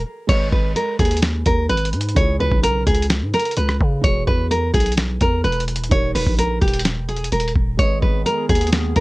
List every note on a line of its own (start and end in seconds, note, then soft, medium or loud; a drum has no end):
0.27 0.51 G#1 loud
0.27 2.12 G#3 medium
0.27 2.13 G#4 medium
0.27 2.13 B4 medium
0.27 0.48 C#5 loud
0.27 kick loud
0.27 closed hi-hat medium
0.27 crash loud
0.32 2.14 D#5 medium
0.52 0.75 G#1 loud
0.52 0.71 B4 medium
0.52 kick medium
0.76 0.95 A#4 medium
0.76 closed hi-hat medium
0.99 1.44 D#2 loud
0.99 1.18 G#4 medium
0.99 kick medium
0.99 closed hi-hat medium
1.05 closed hi-hat medium
1.11 closed hi-hat medium
1.17 closed hi-hat medium
1.22 snare loud
1.22 closed hi-hat medium
1.46 1.69 D#2 loud
1.46 1.65 A#4 medium
1.46 kick medium
1.46 closed hi-hat medium
1.69 1.94 G#1 loud
1.69 1.88 B4 medium
1.69 closed hi-hat medium
1.77 closed hi-hat medium
1.85 closed hi-hat medium
1.93 2.15 G#2 loud
1.93 closed hi-hat medium
2.01 closed hi-hat medium
2.09 closed hi-hat medium
2.15 2.39 C#2 loud
2.15 3.99 C#3 medium
2.15 4.00 C#4 medium
2.15 4.01 E4 medium
2.15 2.35 C#5 loud
2.15 kick loud
2.15 closed hi-hat medium
2.19 4.02 G#4 medium
2.40 2.51 C#2 loud
2.40 2.59 B4 medium
2.52 2.85 B1 loud
2.52 kick loud
2.63 2.82 A#4 medium
2.63 closed hi-hat medium
2.87 3.23 C#2 loud
2.87 3.05 G#4 loud
2.87 kick medium
2.87 closed hi-hat medium
2.95 closed hi-hat medium
3.02 closed hi-hat medium
3.10 snare loud
3.10 closed hi-hat medium
3.22 3.33 G#2 loud
3.34 3.53 A#4 medium
3.34 closed hi-hat medium
3.39 closed hi-hat medium
3.45 closed hi-hat medium
3.51 closed hi-hat medium
3.57 3.80 C#2 loud
3.57 3.76 B4 medium
3.57 closed hi-hat medium
3.69 cross-stick loud
3.81 4.03 C#3 loud
3.81 kick medium
4.01 4.26 E1 loud
4.01 5.86 E3 medium
4.01 5.87 E4 medium
4.01 5.88 F#4 medium
4.01 4.23 C#5 loud
4.01 kick loud
4.01 closed hi-hat medium
4.06 5.89 G#4 medium
4.27 4.72 E2 loud
4.27 4.46 B4 medium
4.27 kick medium
4.51 4.70 A#4 medium
4.51 closed hi-hat medium
4.74 5.19 B1 loud
4.74 4.93 G#4 medium
4.74 kick medium
4.74 closed hi-hat medium
4.80 closed hi-hat medium
4.86 closed hi-hat medium
4.92 closed hi-hat medium
4.97 snare loud
4.97 closed hi-hat medium
5.21 5.44 E2 loud
5.21 5.40 A#4 medium
5.21 kick medium
5.21 closed hi-hat medium
5.44 5.81 E1 loud
5.44 5.63 B4 medium
5.44 closed hi-hat medium
5.52 closed hi-hat medium
5.60 closed hi-hat medium
5.68 closed hi-hat medium
5.76 5.91 D#1 loud
5.76 closed hi-hat medium
5.84 closed hi-hat medium
5.89 6.14 D#1 loud
5.89 7.74 D#3 medium
5.89 7.75 D#4 medium
5.89 7.76 G4 medium
5.89 6.11 C#5 loud
5.89 kick loud
5.89 closed hi-hat medium
5.94 7.76 A#4 medium
6.15 6.26 D#1 loud
6.15 6.34 B4 medium
6.15 open hi-hat medium
6.27 6.60 A#1 loud
6.27 kick loud
6.39 6.57 A#4 medium
6.39 closed hi-hat medium
6.61 6.99 D#1 loud
6.61 6.80 G4 medium
6.61 kick medium
6.61 closed hi-hat medium
6.68 closed hi-hat medium
6.74 closed hi-hat medium
6.79 closed hi-hat medium
6.85 snare loud
6.85 closed hi-hat medium
6.97 7.30 E1 loud
7.09 7.27 G#4 medium
7.09 closed hi-hat soft
7.17 closed hi-hat medium
7.24 closed hi-hat medium
7.32 7.55 D#1 loud
7.32 7.51 A#4 medium
7.32 closed hi-hat medium
7.40 closed hi-hat medium
7.48 closed hi-hat medium
7.56 7.78 D#1 loud
7.56 kick medium
7.77 8.01 G#1 loud
7.77 9.00 D#3 medium
7.77 9.00 G#3 medium
7.77 9.00 B3 medium
7.77 9.00 G#4 medium
7.77 9.00 B4 medium
7.77 7.98 C#5 loud
7.77 kick loud
7.77 closed hi-hat medium
7.82 9.00 D#5 medium
8.02 8.25 G#1 loud
8.02 8.21 B4 medium
8.02 kick medium
8.26 8.45 A#4 medium
8.26 closed hi-hat medium
8.49 8.94 D#2 loud
8.49 8.68 G#4 medium
8.49 kick medium
8.49 closed hi-hat medium
8.55 closed hi-hat medium
8.61 closed hi-hat medium
8.67 closed hi-hat medium
8.72 snare loud
8.72 closed hi-hat medium
8.96 9.00 D#2 loud
8.96 9.00 A#4 medium
8.96 kick medium
8.96 closed hi-hat medium